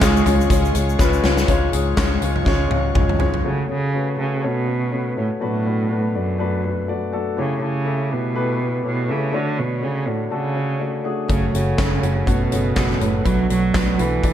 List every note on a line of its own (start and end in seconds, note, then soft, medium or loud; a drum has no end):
0.00 0.22 C#2 loud
0.00 0.23 G#2 medium
0.00 0.26 G#3 loud
0.00 1.00 G#3 loud
0.00 0.26 G#3 medium
0.00 0.26 C#4 loud
0.00 0.26 C#4 medium
0.00 0.02 F4 medium
0.00 0.20 F4 loud
0.00 0.25 F4 medium
0.00 0.03 G#4 medium
0.00 1.47 G#4 medium
0.00 0.21 G#4 loud
0.00 0.23 G#4 medium
0.00 1.45 C#5 medium
0.00 1.46 F5 medium
0.00 1.45 C#6 medium
0.00 kick loud
0.00 snare loud
0.00 clap medium
0.00 closed hi-hat medium
0.00 shaker medium
0.17 shaker soft
0.25 0.46 C#2 medium
0.25 0.44 G#3 medium
0.25 0.45 C#4 medium
0.25 0.49 C#4 soft
0.25 0.50 F4 medium
0.25 0.45 F4 medium
0.25 0.50 G#4 medium
0.25 0.45 G#4 medium
0.25 closed hi-hat medium
0.25 floor tom medium
0.25 shaker soft
0.41 shaker medium
0.49 0.71 C#2 medium
0.49 0.75 C#3 medium
0.49 0.69 G#3 medium
0.49 0.75 G#3 medium
0.49 0.69 C#4 medium
0.49 0.75 C#4 medium
0.49 0.69 F4 medium
0.49 0.75 F4 medium
0.49 0.73 G#4 medium
0.49 0.69 C#5 medium
0.49 kick medium
0.49 closed hi-hat medium
0.49 shaker medium
0.65 shaker soft
0.74 0.95 C#2 loud
0.74 0.93 G#3 medium
0.74 0.93 C#4 medium
0.74 0.99 C#4 soft
0.74 0.94 F4 medium
0.74 1.00 F4 medium
0.74 0.99 G#4 medium
0.74 0.94 C#5 medium
0.74 0.98 G#5 medium
0.74 closed hi-hat medium
0.74 shaker soft
0.89 shaker medium
0.98 1.20 C#2 medium
0.98 1.24 G#3 medium
0.98 1.18 G#3 loud
0.98 1.18 C#4 loud
0.98 1.25 C#4 medium
0.98 1.18 F4 loud
0.98 1.23 F4 medium
0.98 1.22 G#4 medium
0.98 1.18 B4 loud
0.98 1.22 F5 medium
0.98 kick loud
0.98 snare medium
0.98 shaker medium
1.13 shaker soft
1.23 1.44 C#2 medium
1.23 1.42 G#3 medium
1.23 1.42 C#4 medium
1.23 1.48 C#4 medium
1.23 1.43 F4 medium
1.23 1.48 F4 medium
1.23 1.48 G#4 medium
1.23 1.43 C#5 loud
1.23 1.47 F5 medium
1.23 snare loud
1.37 snare medium
1.37 shaker medium
1.47 1.69 C#2 medium
1.47 2.18 G#2 medium
1.47 1.73 C#3 medium
1.47 1.67 G#3 loud
1.47 1.73 G#3 medium
1.47 1.67 C#4 medium
1.47 1.73 C#4 medium
1.47 1.67 F4 medium
1.47 1.73 F4 medium
1.47 3.43 G#4 medium
1.47 1.71 G#4 medium
1.47 3.42 C#5 medium
1.47 1.67 C#5 loud
1.47 3.42 F5 medium
1.47 3.42 C#6 medium
1.47 kick loud
1.47 closed hi-hat medium
1.72 1.93 C#2 medium
1.72 1.91 G#3 medium
1.72 1.92 C#4 medium
1.72 1.96 C#4 soft
1.72 1.92 F4 medium
1.72 1.97 F4 soft
1.72 1.97 G#4 medium
1.72 1.92 G#4 medium
1.72 closed hi-hat medium
1.96 2.18 C#2 medium
1.96 2.22 G#3 medium
1.96 2.15 G#3 medium
1.96 2.16 C#4 medium
1.96 2.22 C#4 medium
1.96 2.16 F4 medium
1.96 2.21 F4 medium
1.96 2.20 G#4 medium
1.96 2.16 C#5 loud
1.96 kick loud
1.96 snare loud
1.96 clap medium
1.96 closed hi-hat medium
2.21 2.42 C#2 medium
2.21 2.41 G#3 medium
2.21 2.41 C#4 medium
2.21 2.45 C#4 soft
2.21 2.46 F4 medium
2.21 2.41 F4 medium
2.21 2.46 G#4 medium
2.21 2.41 C#5 medium
2.21 closed hi-hat medium
2.36 floor tom medium
2.45 2.67 C#2 medium
2.45 2.70 C#3 medium
2.45 2.71 G#3 medium
2.45 2.65 G#3 loud
2.45 2.65 C#4 medium
2.45 2.71 C#4 medium
2.45 2.65 F4 loud
2.45 2.70 F4 medium
2.45 2.68 G#4 medium
2.45 2.65 C#5 loud
2.45 kick medium
2.45 snare soft
2.69 2.91 C#2 medium
2.69 2.89 G#3 medium
2.69 2.89 C#4 medium
2.69 2.94 C#4 soft
2.69 2.96 F4 medium
2.69 2.90 F4 medium
2.69 2.95 G#4 medium
2.69 2.90 C#5 medium
2.69 high tom medium
2.94 3.16 C#2 medium
2.94 3.20 G#3 medium
2.94 3.14 G#3 medium
2.94 3.14 C#4 medium
2.94 3.20 C#4 medium
2.94 3.14 F4 medium
2.94 3.19 F4 medium
2.94 3.18 G#4 medium
2.94 3.14 C#5 medium
2.94 kick loud
2.94 mid tom medium
3.09 mid tom medium
3.19 3.40 C#2 medium
3.19 3.38 G#3 medium
3.19 3.39 C#4 medium
3.19 3.46 C#4 soft
3.19 3.45 F4 medium
3.19 3.39 F4 medium
3.19 3.44 G#4 medium
3.19 3.39 C#5 medium
3.19 floor tom medium
3.34 floor tom medium
3.44 4.14 C#3 soft
3.44 3.68 C#3 medium
3.44 3.63 A3 medium
3.44 3.63 C#4 medium
3.44 3.63 F#4 medium
3.44 3.63 C#5 medium
3.68 4.16 C#3 medium
3.68 3.87 A3 medium
3.68 3.87 C#4 soft
3.68 3.88 F#4 medium
3.68 3.88 G#4 medium
3.93 4.12 A3 medium
3.93 4.12 C#4 medium
3.93 4.12 F#4 medium
3.93 4.12 B4 medium
4.18 4.46 C#3 medium
4.18 4.36 A3 medium
4.18 4.37 C#4 medium
4.18 4.37 F#4 soft
4.18 4.37 A4 medium
4.42 5.18 B2 medium
4.42 4.61 A3 medium
4.42 4.61 C#4 medium
4.42 4.61 F#4 medium
4.42 4.62 C#5 medium
4.67 4.85 A3 medium
4.67 4.86 C#4 soft
4.67 4.86 F#4 soft
4.67 4.86 C#5 medium
4.92 5.10 A3 medium
4.92 5.10 C#4 medium
4.92 5.10 F#4 medium
4.92 5.11 B4 medium
5.16 5.29 A2 medium
5.16 5.35 A3 medium
5.16 5.35 C#4 soft
5.16 5.35 F#4 medium
5.16 5.35 C#5 medium
5.41 6.18 A2 medium
5.41 6.11 B2 soft
5.41 6.11 F#3 soft
5.41 5.59 A3 medium
5.41 5.59 D4 medium
5.41 5.59 F#4 medium
5.41 5.60 B4 medium
5.65 5.84 A3 medium
5.65 5.84 D4 medium
5.65 5.84 F#4 medium
5.65 5.84 B4 medium
5.89 6.08 A3 medium
5.89 6.08 D4 medium
5.89 6.08 F#4 medium
5.89 6.09 B4 medium
6.14 7.14 F#2 medium
6.14 6.33 A3 medium
6.14 6.33 D4 soft
6.14 6.33 F#4 medium
6.14 6.33 D5 medium
6.39 6.57 A3 medium
6.39 6.57 D4 medium
6.39 6.58 F#4 medium
6.39 6.58 B4 medium
6.63 6.82 A3 medium
6.63 6.82 D4 medium
6.63 6.82 F#4 soft
6.63 6.82 B4 medium
6.88 7.06 A3 medium
6.88 7.06 D4 medium
6.88 7.06 F#4 medium
6.88 7.07 D5 medium
7.12 7.31 A3 medium
7.12 7.31 D4 medium
7.12 7.31 F#4 medium
7.12 7.31 A4 medium
7.37 8.07 C#3 soft
7.37 7.61 C#3 medium
7.37 7.55 A3 medium
7.37 7.56 E4 medium
7.37 7.56 G4 medium
7.37 7.56 C#5 medium
7.61 8.14 C#3 medium
7.61 7.80 A3 medium
7.61 7.80 E4 medium
7.61 7.80 G4 medium
7.61 7.80 A4 medium
7.85 8.04 A3 medium
7.85 8.04 E4 medium
7.85 8.04 G4 medium
7.85 8.05 E5 medium
8.10 8.85 B2 medium
8.10 8.29 A3 medium
8.10 8.29 E4 soft
8.10 8.29 G4 medium
8.10 8.29 B4 medium
8.35 8.53 A3 medium
8.35 8.53 E4 medium
8.35 8.54 G4 medium
8.35 8.54 B4 medium
8.59 8.78 A3 medium
8.59 8.78 E4 medium
8.59 8.78 G4 medium
8.59 8.78 B4 medium
8.83 9.12 B2 medium
8.83 9.02 A3 medium
8.83 9.02 E4 medium
8.83 9.03 G4 medium
8.83 9.03 C#5 medium
9.08 9.37 C#3 medium
9.08 9.27 A3 medium
9.08 9.27 E4 medium
9.08 9.27 G4 medium
9.08 9.27 E5 medium
9.32 10.03 D3 soft
9.32 9.61 D3 medium
9.32 9.51 A3 medium
9.32 9.51 D4 medium
9.32 9.52 F#4 medium
9.32 9.52 C#5 medium
9.57 9.86 B2 medium
9.57 9.76 A3 medium
9.57 9.76 D4 medium
9.57 9.76 F#4 medium
9.57 9.77 C#5 medium
9.81 10.09 C#3 medium
9.81 10.00 A3 medium
9.81 10.00 D4 medium
9.81 10.01 F#4 medium
9.81 10.01 C#5 medium
10.06 10.32 A2 medium
10.06 10.25 A3 medium
10.06 10.25 D4 medium
10.06 10.25 F#4 medium
10.06 10.25 C#5 medium
10.30 11.02 C#3 medium
10.30 10.49 A3 medium
10.30 10.49 D4 medium
10.30 10.50 F#4 medium
10.30 10.50 A4 medium
10.55 10.74 A3 medium
10.55 10.74 D4 soft
10.55 10.74 F#4 medium
10.55 10.74 C#5 medium
10.79 10.98 A3 medium
10.79 10.98 D4 medium
10.79 10.99 F#4 medium
10.79 10.99 C#5 medium
11.04 11.23 A3 medium
11.04 11.23 D4 medium
11.04 11.23 F#4 medium
11.04 11.23 G#4 medium
11.28 11.50 F#1 medium
11.28 11.54 F#2 medium
11.28 11.52 C#3 medium
11.28 11.54 C#3 medium
11.28 11.99 C#3 soft
11.28 11.54 F#3 medium
11.28 11.48 A3 medium
11.28 11.54 A3 medium
11.28 11.48 C#4 medium
11.28 11.53 C#4 medium
11.28 11.48 F#4 medium
11.28 11.52 F#4 medium
11.28 11.48 C#5 medium
11.28 kick medium
11.28 closed hi-hat medium
11.53 11.74 F#1 medium
11.53 12.28 C#3 medium
11.53 11.78 F#3 soft
11.53 11.72 A3 medium
11.53 11.78 A3 soft
11.53 11.72 C#4 medium
11.53 11.79 C#4 soft
11.53 11.78 F#4 soft
11.53 11.72 F#4 medium
11.53 11.73 C#5 medium
11.53 closed hi-hat medium
11.77 11.99 F#1 medium
11.77 12.03 F#2 medium
11.77 12.03 C#3 medium
11.77 12.03 F#3 medium
11.77 11.96 A3 medium
11.77 12.03 A3 medium
11.77 11.96 C#4 medium
11.77 12.02 C#4 medium
11.77 11.97 F#4 medium
11.77 12.01 F#4 medium
11.77 11.97 C#5 medium
11.77 kick medium
11.77 snare loud
11.77 clap medium
11.77 closed hi-hat medium
12.02 12.23 F#1 medium
12.02 12.21 A3 medium
12.02 12.26 A3 soft
12.02 12.21 C#4 medium
12.02 12.27 C#4 soft
12.02 12.27 F#4 soft
12.02 12.21 F#4 medium
12.02 12.21 C#5 medium
12.02 closed hi-hat medium
12.06 12.25 F#3 soft
12.26 12.48 F#1 medium
12.26 13.02 B2 medium
12.26 12.51 F#3 medium
12.26 12.45 A3 medium
12.26 12.52 A3 medium
12.26 12.45 C#4 medium
12.26 12.51 C#4 medium
12.26 12.46 F#4 medium
12.26 12.50 F#4 medium
12.26 12.46 C#5 medium
12.26 kick medium
12.26 closed hi-hat medium
12.51 12.73 F#1 medium
12.51 12.76 F#3 soft
12.51 12.70 A3 medium
12.51 12.76 A3 soft
12.51 12.70 C#4 medium
12.51 12.77 C#4 soft
12.51 12.76 F#4 soft
12.51 12.70 F#4 medium
12.51 12.71 G#4 medium
12.51 closed hi-hat medium
12.75 12.97 F#1 medium
12.75 13.01 F#2 medium
12.75 13.01 C#3 medium
12.75 13.02 F#3 medium
12.75 12.94 A3 medium
12.75 13.01 A3 medium
12.75 12.95 C#4 medium
12.75 13.01 C#4 medium
12.75 12.95 F#4 medium
12.75 12.99 F#4 medium
12.75 12.95 G#4 medium
12.75 kick loud
12.75 snare medium
12.75 clap medium
12.75 closed hi-hat medium
12.90 snare soft
13.00 13.21 F#1 medium
13.00 13.27 A2 medium
13.00 13.24 F#3 soft
13.00 13.19 A3 medium
13.00 13.25 A3 soft
13.00 13.19 C#4 medium
13.00 13.26 C#4 soft
13.00 13.25 F#4 soft
13.00 13.19 F#4 medium
13.00 13.19 B4 medium
13.00 closed hi-hat medium
13.24 13.46 B1 medium
13.24 13.50 B2 medium
13.24 13.95 B2 medium
13.24 13.95 F#3 medium
13.24 13.49 F#3 medium
13.24 13.50 F#3 medium
13.24 13.43 A3 medium
13.24 13.50 A3 medium
13.24 13.43 D4 medium
13.24 13.50 D4 medium
13.24 13.44 F#4 medium
13.24 13.49 F#4 medium
13.24 13.44 B4 medium
13.24 kick medium
13.24 closed hi-hat medium
13.48 13.70 B1 medium
13.48 14.01 F#3 loud
13.48 13.67 A3 medium
13.48 13.68 D4 medium
13.48 13.75 D4 soft
13.48 13.68 F#4 medium
13.48 13.75 F#4 soft
13.48 13.68 B4 medium
13.48 closed hi-hat medium
13.53 13.74 A3 soft
13.73 13.95 B1 medium
13.73 13.99 B2 medium
13.73 13.99 F#3 medium
13.73 13.92 A3 medium
13.73 14.00 A3 medium
13.73 13.92 D4 medium
13.73 13.99 D4 medium
13.73 13.92 F#4 medium
13.73 13.97 F#4 medium
13.73 13.93 B4 medium
13.73 kick loud
13.73 snare medium
13.73 clap medium
13.73 closed hi-hat medium
13.98 14.19 B1 medium
13.98 14.33 E3 medium
13.98 14.17 A3 medium
13.98 14.23 A3 soft
13.98 14.17 D4 medium
13.98 14.24 D4 soft
13.98 14.23 F#4 soft
13.98 14.17 F#4 medium
13.98 14.18 B4 medium
13.98 closed hi-hat medium
14.23 14.33 B1 medium
14.23 14.33 F#3 medium
14.23 14.33 A3 medium
14.23 14.33 A3 soft
14.23 14.33 D4 medium
14.23 14.33 F#4 medium
14.23 14.33 D5 medium
14.23 kick medium
14.23 closed hi-hat medium